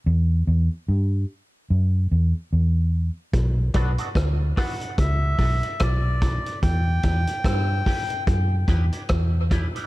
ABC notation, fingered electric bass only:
X:1
M:4/4
L:1/16
Q:"Swing 16ths" 1/4=73
K:Bm
V:1 name="Fingered electric bass" clef=bass
E,,2 E,, z G,,2 z2 F,,2 E,, z E,,3 z | B,,,2 B,,, z D,,2 z2 C,,2 B,,, z B,,,3 z | E,,2 E,, z G,,2 z2 F,,2 E,, z E,,3 z |]